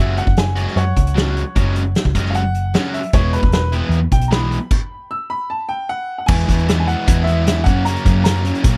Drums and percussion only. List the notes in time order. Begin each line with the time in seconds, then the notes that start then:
0.17 closed hi-hat
0.27 kick
0.37 snare, closed hi-hat
0.56 closed hi-hat
0.68 snare
0.77 closed hi-hat
0.97 kick, closed hi-hat
1.07 closed hi-hat
1.17 snare, closed hi-hat
1.37 closed hi-hat
1.56 kick, closed hi-hat
1.76 closed hi-hat
1.95 snare, closed hi-hat
2.05 kick
2.15 kick, closed hi-hat
2.25 snare
2.34 closed hi-hat
2.54 closed hi-hat
2.74 snare, closed hi-hat
2.94 closed hi-hat
3.03 closed hi-hat
3.13 kick, closed hi-hat
3.33 closed hi-hat
3.43 kick
3.52 snare, closed hi-hat
3.72 closed hi-hat
3.92 closed hi-hat
4.11 kick, closed hi-hat
4.21 closed hi-hat
4.31 snare, closed hi-hat
4.52 closed hi-hat
4.71 kick, crash
6.28 kick, crash
6.39 closed hi-hat
6.49 kick, closed hi-hat
6.59 closed hi-hat
6.68 snare, closed hi-hat
6.89 closed hi-hat
7.08 kick, closed hi-hat
7.27 closed hi-hat
7.47 snare, closed hi-hat
7.66 kick, closed hi-hat
7.86 closed hi-hat
7.96 closed hi-hat
8.06 kick, closed hi-hat
8.25 snare, closed hi-hat
8.45 closed hi-hat
8.55 closed hi-hat
8.64 kick, closed hi-hat